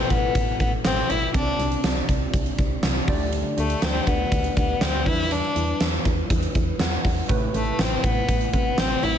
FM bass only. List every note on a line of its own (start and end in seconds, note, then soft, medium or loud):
0.10 0.28 A1 loud
0.35 0.53 A1 loud
0.60 0.78 A1 loud
0.85 1.03 A1 loud
1.10 1.27 A1 loud
1.34 1.52 C2 loud
1.59 1.77 C2 loud
1.84 2.02 C2 loud
2.09 2.27 C2 medium
2.34 2.51 C2 loud
2.59 2.76 C2 loud
2.83 3.01 C2 loud
3.08 3.44 D2 loud
3.58 3.75 D2 medium
3.82 4.00 D2 loud
4.07 4.25 D2 medium
4.32 4.50 D2 loud
4.57 4.75 D2 loud
4.81 5.08 D2 loud
5.06 5.42 E2 loud
5.56 5.74 E2 medium
5.81 5.99 E2 medium
6.05 6.23 E2 loud
6.30 6.48 E2 medium
6.55 6.73 E2 loud
6.80 6.98 E2 loud
7.05 7.23 E2 loud
7.29 7.47 A1 loud
7.54 7.72 A1 loud
7.79 7.97 A1 loud
8.04 8.22 A1 loud
8.29 8.46 A1 medium
8.54 8.71 A1 loud
8.78 8.96 A1 loud
9.03 9.18 A1 loud